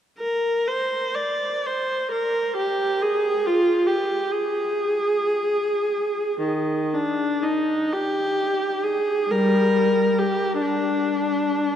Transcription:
0.19 0.65 A#4 soft
0.68 1.18 C5 soft
1.15 1.66 D5 soft
1.67 2.14 C5 soft
2.11 2.58 A#4 soft
2.56 3.02 G4 soft
3.02 3.47 G#4 soft
3.47 3.91 F4 soft
3.87 4.35 G4 soft
4.32 6.40 G#4 soft
6.40 6.95 D#3 soft
6.94 7.45 D4 soft
7.43 7.93 D#4 soft
7.93 8.87 G4 soft
8.84 9.32 G#4 soft
9.31 10.16 G3 soft
9.31 10.20 A#4 soft
10.19 10.63 G4 soft
10.62 11.76 D4 soft

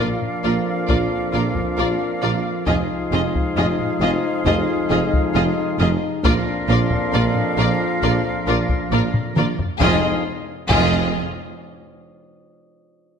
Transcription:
0.00 0.17 A#1 medium
0.00 2.64 F2 medium
0.00 2.64 F3 medium
0.00 2.51 A#3 medium
0.00 2.51 D4 medium
0.00 2.63 F4 medium
0.00 2.67 A#4 medium
0.00 2.67 D5 medium
0.00 2.64 F5 medium
0.21 taiko low-mid soft
0.44 0.62 A#1 medium
0.44 0.53 A#1 medium
0.44 0.53 A#2 medium
0.44 0.52 F4 soft
0.44 0.52 A#4 medium
0.44 0.52 D5 medium
0.88 1.07 A#1 medium
0.88 0.98 A#1 medium
0.88 0.97 A#2 medium
0.88 0.97 F4 medium
0.88 0.97 A#4 medium
0.88 0.96 D5 medium
0.88 taiko medium
1.33 1.51 A#1 medium
1.33 1.42 A#1 medium
1.33 1.42 A#2 medium
1.33 1.41 F4 medium
1.33 1.41 A#4 medium
1.33 1.42 D5 medium
1.56 taiko medium
1.77 1.96 A#1 medium
1.77 1.87 A#1 medium
1.77 1.87 A#2 medium
1.77 1.86 F4 medium
1.77 1.85 A#4 medium
1.77 1.86 D5 medium
2.22 2.41 A#1 medium
2.22 2.31 A#1 medium
2.22 2.31 A#2 medium
2.22 2.31 F4 medium
2.22 2.31 A#4 medium
2.22 2.30 D5 medium
2.66 2.85 F1 medium
2.66 2.76 F1 medium
2.66 6.07 F2 medium
2.66 2.76 F2 medium
2.66 6.07 F3 medium
2.66 6.25 G#3 medium
2.66 6.06 D#4 medium
2.66 6.21 D#4 medium
2.66 6.06 F4 medium
2.66 2.75 F4 medium
2.66 6.06 G#4 medium
2.66 2.76 G#4 medium
2.66 2.74 D#5 medium
2.66 6.06 F5 medium
2.66 taiko medium
3.12 3.20 F1 medium
3.12 3.30 F1 medium
3.12 3.20 F2 medium
3.12 3.20 F4 medium
3.12 3.20 G#4 medium
3.12 3.20 D#5 medium
3.34 taiko medium
3.56 3.64 F1 medium
3.56 3.75 F1 medium
3.56 3.65 F2 medium
3.56 3.65 F4 medium
3.56 3.65 G#4 medium
3.56 3.66 D#5 medium
3.56 taiko low-mid soft
3.79 taiko low-mid soft
4.00 4.08 F1 medium
4.00 4.19 F1 medium
4.00 4.09 F2 medium
4.00 4.10 F4 medium
4.00 4.10 G#4 medium
4.00 4.10 D#5 medium
4.45 4.54 F1 medium
4.45 4.64 F1 medium
4.45 4.54 F2 medium
4.45 4.53 F4 medium
4.45 4.54 G#4 medium
4.45 4.54 D#5 medium
4.45 taiko medium
4.90 5.08 F1 medium
4.90 4.98 F1 medium
4.90 4.98 F2 medium
4.90 4.99 F4 medium
4.90 4.98 G#4 medium
4.90 4.98 D#5 medium
5.13 taiko medium
5.35 5.53 F1 medium
5.35 5.43 F1 medium
5.35 5.43 F2 medium
5.35 5.43 F4 medium
5.35 5.43 G#4 medium
5.35 5.43 D#5 medium
5.79 5.97 F1 medium
5.79 5.87 F1 medium
5.79 5.88 F2 medium
5.79 5.88 F4 medium
5.79 5.88 G#4 medium
5.79 5.88 D#5 medium
6.23 6.41 A#1 medium
6.23 6.32 A#1 medium
6.23 9.45 F2 medium
6.23 6.32 A#2 medium
6.23 9.45 F3 medium
6.23 9.45 A#3 medium
6.23 9.49 D4 medium
6.23 9.45 F4 loud
6.23 6.32 F4 medium
6.23 9.49 A#4 medium
6.23 6.32 A#4 medium
6.23 6.33 D5 medium
6.23 9.45 F5 medium
6.23 taiko loud
6.68 6.86 A#1 medium
6.68 6.76 A#1 medium
6.68 6.76 A#2 medium
6.68 6.77 F4 medium
6.68 6.77 A#4 medium
6.68 6.78 D5 medium
6.91 taiko medium
7.13 7.31 A#1 medium
7.13 7.22 A#1 medium
7.13 7.21 A#2 medium
7.13 7.22 F4 medium
7.13 7.21 A#4 medium
7.13 7.22 D5 medium
7.13 taiko low-mid medium
7.35 taiko low-mid soft
7.57 7.75 A#1 medium
7.57 7.65 A#1 medium
7.57 7.66 A#2 medium
7.57 7.66 F4 medium
7.57 7.65 A#4 medium
7.57 7.68 D5 medium
8.01 8.20 A#1 medium
8.01 8.10 A#1 medium
8.01 8.10 A#2 medium
8.01 8.10 F4 medium
8.01 8.11 A#4 medium
8.01 8.12 D5 medium
8.01 taiko medium
8.46 8.65 A#1 medium
8.46 8.55 A#1 medium
8.46 8.55 A#2 medium
8.46 8.56 F4 medium
8.46 8.55 A#4 medium
8.46 8.56 D5 medium
8.69 taiko medium
8.90 9.09 A#1 medium
8.90 8.99 A#1 medium
8.90 9.00 A#2 medium
8.90 9.00 F4 medium
8.90 9.00 A#4 medium
8.90 9.00 D5 medium
8.90 taiko low-mid medium
9.14 taiko low-mid medium
9.35 9.53 A#1 medium
9.35 9.44 A#1 medium
9.35 9.44 A#2 medium
9.35 9.45 F4 medium
9.35 9.44 A#4 medium
9.35 9.45 D5 medium
9.35 taiko mid medium
9.59 taiko low medium
9.80 9.99 F1 medium
9.80 10.06 F1 medium
9.80 10.23 F2 medium
9.80 10.06 F2 medium
9.80 10.06 F2 loud
9.80 10.22 F3 medium
9.80 10.23 G#3 medium
9.80 10.23 D#4 medium
9.80 10.23 F4 medium
9.80 10.06 F4 medium
9.80 10.22 G#4 medium
9.80 10.06 G#4 medium
9.80 10.06 D#5 medium
9.80 10.23 F5 medium
9.80 taiko medium
10.69 11.12 F1 medium
10.69 11.20 F1 medium
10.69 11.20 F2 loud
10.69 11.12 F2 loud
10.69 11.20 F4 medium
10.69 11.20 G#4 medium
10.69 11.21 D#5 medium
10.69 taiko medium

